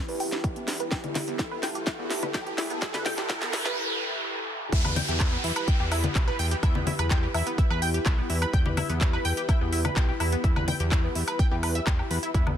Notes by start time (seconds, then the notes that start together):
Already playing: E4 G4 B4, riser
0.08 E2 B4, open hi-hat
0.20 G5, open hi-hat
0.32 G4, snare, closed hi-hat
0.44 B1 E4, kick, closed hi-hat
0.56 B3, closed hi-hat
0.68 E2 E4, snare, open hi-hat
0.80 B4, closed hi-hat
0.91 E2 A4 G5, kick, snare, closed hi-hat
1.04 G4, closed hi-hat, low conga
1.15 E4, snare, open hi-hat, low conga
1.27 E2 B3, closed hi-hat
1.39 E4, kick, snare, closed hi-hat
1.51 B4
1.63 E2 G5, snare, open hi-hat
1.75 G4, closed hi-hat
1.87 E4, kick, snare, closed hi-hat
1.99 E2 B3
2.11 E4, snare, open hi-hat
2.23 B4, closed hi-hat, low conga
2.34 B1 G5, kick, snare, closed hi-hat
2.46 G4, closed hi-hat
2.58 E2 E4, snare, open hi-hat
2.70 B3, closed hi-hat
2.82 E2 E4, kick, snare, closed hi-hat, noise sweep
2.94 B4, snare, closed hi-hat, low conga
3.06 G5, snare, open hi-hat, low conga
3.18 E2 G4, snare, closed hi-hat
3.30 E4, kick, snare, closed hi-hat
3.42 B3, snare
3.53 E2 E4, snare, open hi-hat
3.66 B4, snare, closed hi-hat
4.72 E2 E4 G4 B4 E5, kick, closed hi-hat, downlifter
4.85 B4 B5, low conga, low woodblock
4.96 G5 G6, open hi-hat, low conga
5.08 E2 G4 G5, closed hi-hat
5.20 E4 E5, kick, clap, closed hi-hat, low woodblock
5.32 B3 B4
5.44 E2 E4 E5, open hi-hat
5.56 B4 B5, closed hi-hat, low woodblock
5.68 G5 G6, kick, closed hi-hat
5.80 E2 G4 G5
5.92 E4 E5, open hi-hat, low woodblock
6.04 B3 B4, closed hi-hat, low conga
6.15 B1 E4 E5, kick, clap, closed hi-hat
6.28 B4 B5, low woodblock
6.39 E2 G5 G6, open hi-hat
6.51 G4 G5, closed hi-hat
6.63 E2 E4 E5, kick, closed hi-hat, low woodblock
6.75 B3 B4, low conga
6.87 E4 E5, open hi-hat, low conga
6.99 E2 B4 B5, closed hi-hat, low woodblock
7.11 G5 G6, kick, clap, closed hi-hat
7.23 G4 G5
7.34 E2 E4 E5, open hi-hat, low woodblock
7.47 B3 B4, closed hi-hat
7.58 E4 E5, kick, closed hi-hat
7.70 E2 B4 B5, low woodblock
7.82 G5 G6, open hi-hat
7.94 G4 G5, closed hi-hat
8.06 B1 E4 E5, kick, clap, closed hi-hat, low woodblock
8.18 B3 B4
8.30 E2 E4 E5, open hi-hat
8.42 B4 B5, closed hi-hat, low woodblock
8.53 E2 G5 G6, kick, closed hi-hat
8.66 G4 G5, low conga
8.77 E4 E5, open hi-hat, low conga, low woodblock
8.89 E2 B3 B4, closed hi-hat
9.01 E4 E5, kick, clap, closed hi-hat
9.13 B4 B5, low woodblock
9.25 E2 G5 G6, open hi-hat
9.37 G4 G5, closed hi-hat
9.49 E4 E5, kick, closed hi-hat, low woodblock
9.61 E2 B3 B4
9.73 E4 E5, open hi-hat
9.85 B4 B5, closed hi-hat, low conga, low woodblock
9.96 B1 G5 G6, kick, clap, closed hi-hat
10.09 G4 G5
10.20 E2 E4 E5, open hi-hat, low woodblock
10.32 B3 B4, closed hi-hat
10.44 E2 E4 E5, kick, closed hi-hat
10.56 B4 B5, low conga, low woodblock
10.68 G5 G6, open hi-hat, low conga
10.80 E2 G4 G5, closed hi-hat
10.92 E4 E5, kick, clap, closed hi-hat, low woodblock
11.04 B3 B4
11.15 E2 E4 E5, open hi-hat
11.28 B4 B5, closed hi-hat, low woodblock
11.39 G5 G6, kick, closed hi-hat
11.51 E2 G4 G5
11.63 B4 B5, open hi-hat, low woodblock
11.75 E5 E6, closed hi-hat
11.87 E2 G5 G6, kick, clap, closed hi-hat
11.99 G4 G5, low woodblock
12.11 E2 B4 B5, open hi-hat
12.23 E4 E5, closed hi-hat
12.34 E2 E4 F#4 A4 D5 E5, kick, closed hi-hat
12.47 B3 B4, low conga, low woodblock